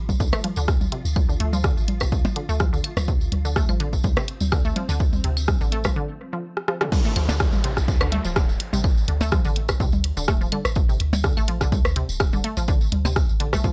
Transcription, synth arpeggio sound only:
0.20 D3
0.33 A3
0.44 F3
0.57 D3
0.92 C3
1.29 D3
1.40 A3
1.53 F3
1.64 D3
2.01 C3
2.36 D3
2.49 A3
2.60 F3
2.73 D3
3.08 C3
3.45 D3
3.56 A3
3.69 F3
3.80 D3
4.17 C3
4.52 D3
4.65 A3
4.76 F3
4.89 D3
5.24 C3
5.61 D3
5.72 A3
5.85 F3
5.96 D3
6.33 F3
6.68 F3
6.81 D3
6.92 D3
7.05 A3
7.16 F3
7.29 D3
7.64 C3
8.01 D3
8.12 A3
8.25 F3
8.36 D3
8.73 C3
9.08 D3
9.21 A3
9.32 F3
9.45 D3
9.80 C3
10.17 D3
10.28 A3
10.41 F3
10.52 D3
10.89 C3
11.24 D3
11.37 A3
11.48 F3
11.61 D3
11.96 C3
12.33 D3
12.44 A3
12.57 F3
12.68 D3
13.05 C3
13.40 D3
13.53 A3
13.64 F3

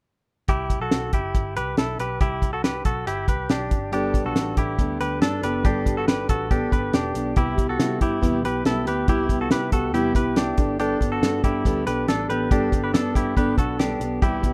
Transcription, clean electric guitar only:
0.49 E4 G4
0.82 F#4 A4
1.14 E4 G4
1.57 G4 B4
1.78 E4 A4
2.00 G4 B4
2.21 E4 G4
2.53 F#4 A4
2.64 G4 B4
2.86 F#4 A4
3.07 E4 G4
3.29 G4 B4
3.50 D4 G4
3.93 D4 G4
4.26 F#4 A4
4.58 E4 G4
5.01 G4 B4
5.22 D4 A4
5.44 G4 B4
5.65 D4 G4
5.97 F#4 A4
6.08 G4 B4
6.30 F#4 A4
6.51 D4 G4
6.72 G4 B4
6.94 D4 G4
7.37 E4 G4
7.69 F#4 A4
8.02 E4 G4
8.45 G4 B4
8.66 E4 A4
8.88 G4 B4
9.09 E4 G4
9.41 F#4 A4
9.52 G4 B4
9.73 F#4 A4
9.94 E4 G4
10.16 G4 B4
10.37 D4 G4
10.80 D4 G4
11.12 F#4 A4
11.44 E4 G4
11.87 G4 B4
12.09 D4 A4
12.30 G4 B4
12.52 D4 G4
12.84 G4 B4
12.94 D4 A4
13.15 E4 G4
13.37 G4 B4
13.58 F#4 A4
13.79 D4 G4
14.22 E4 G4

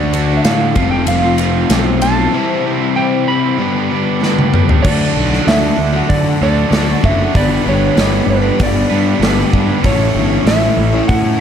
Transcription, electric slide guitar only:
Already playing: D5
0.37 E5
0.45 F5
0.91 G5
1.08 F5
2.02 A5
2.96 G5
3.28 B5
4.83 D5
5.48 E5
6.09 D5
6.43 D5
7.05 E5
7.37 D5
7.69 C#5
8.30 B4
8.63 D5
9.86 C#5
10.47 E5
11.08 F#5

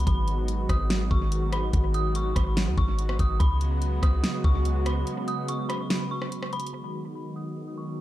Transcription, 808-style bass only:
0.07 G#1
0.69 G#1
1.11 G#1
1.73 G#1
2.36 G#1
2.67 D#2
2.78 G#1
3.19 G#1
3.40 C#2
4.03 C#2
4.44 C#2

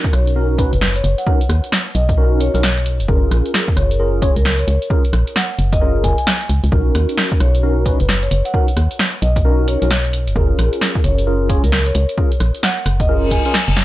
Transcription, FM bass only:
0.13 B1
0.73 F#1
1.04 F#1
1.49 D#2
1.95 B1
2.54 B1
3.00 F#1
3.09 F#1
3.31 A#1
3.77 F#1
4.36 C#2
4.68 C#2
5.13 A#1
5.59 F#1
6.04 F#1
6.50 C#2
6.64 C#2
6.72 B1
6.95 D#2
7.40 B1
8.00 F#1
8.31 F#1
8.77 D#2
9.22 B1
9.82 B1
10.27 F#1
10.36 F#1
10.59 A#1
11.04 F#1
11.64 C#2
11.95 C#2
12.40 A#1
12.86 F#1
13.68 F#1

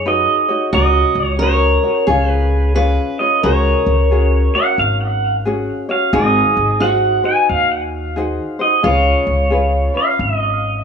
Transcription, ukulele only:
0.06 D#4 F#4 B4 C#5
0.48 D#4 F#4 C#5
0.73 C#4 F#4 A#4 C#5
1.40 C#4 F#4 A#4 C#5
1.84 C#4 F#4 C#5
2.08 C#4 F4 G#4 C#5
2.75 C#4 F4 G#4 C#5
3.20 C#4 F4 C#5
3.44 C#4 F#4 G#4 C#5
4.11 C#4 F#4 G#4 C#5
4.55 C#4 F#4 C#5
5.45 C#4 F#4 G#4 C#5
5.89 C#4 F#4 C#5
6.13 D#4 F#4 G#4 C5
6.80 D#4 F#4 G#4 C5
7.23 D#4 F#4 C5
8.16 D#4 F#4 G#4 C5
8.59 D#4 F#4 C5
8.83 C#4 F4 G#4 B4
9.50 C#4 F4 G#4 B4
9.94 C#4 F4 B4

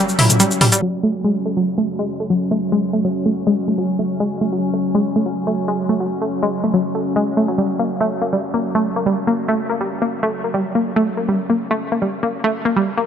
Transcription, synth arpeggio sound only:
0.19 E4
0.40 G3
0.61 G3
0.72 G3
0.82 F#3
1.03 A3
1.24 G#3
1.46 A3
1.57 F#3
1.78 A3
1.99 G#3
2.20 A3
2.30 F#3
2.51 A3
2.72 G#3
2.93 A3
3.05 F#3
3.26 A3
3.47 G#3
3.68 A3
3.78 F#3
3.99 A3
4.20 G#3
4.41 A3
4.52 F#3
4.74 A3
4.95 G#3
5.16 A3
5.26 F#3
5.47 A3
5.68 G#3
5.89 A3
6.00 F#3
6.21 A3
6.43 G#3
6.64 A3
6.74 F#3
6.95 A3
7.16 G#3
7.37 A3
7.48 F#3
7.58 G3
7.79 A#3
8.01 A3
8.22 A#3
8.33 G3
8.54 A#3
8.75 A3
8.96 A#3
9.06 G3
9.27 A#3
9.48 A3
9.69 A#3
9.81 G3
10.02 A#3
10.23 A3
10.44 A#3
10.54 G3
10.75 A#3
10.96 A3
11.17 A#3
11.29 G3
11.50 A#3
11.71 A3
11.92 A#3
12.02 G3
12.23 A#3
12.44 A3
12.65 A#3
12.76 G3
12.98 A#3

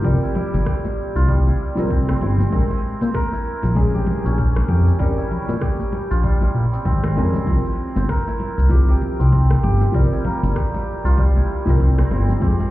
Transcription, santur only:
Already playing: C4 E4 G4 A#4 C5
0.04 G3
0.23 E4
0.36 E4
0.67 G4
1.16 F4
1.28 G3
1.47 E4
1.78 C4
1.91 C4
2.09 C4
2.21 E4
2.52 C4
3.02 C5
3.14 A#4
3.33 E4
3.94 G4
4.25 C#4
4.38 C#4
4.69 G4
4.99 G3
5.18 E4
5.30 E4
5.61 G4
6.11 F4
6.24 G3
6.42 E4
6.73 C4
6.85 C4
7.04 C4
7.16 E4
7.47 C4
7.97 C5
8.09 A#4
8.27 E4
8.89 G4
9.19 C4
9.32 C4
9.63 G4
9.94 G3
10.12 E4
10.25 A#3
10.56 G4
11.05 F4
11.17 G3
11.36 E4
11.67 C4
11.80 C4
11.98 C4
12.11 E4
12.42 C4

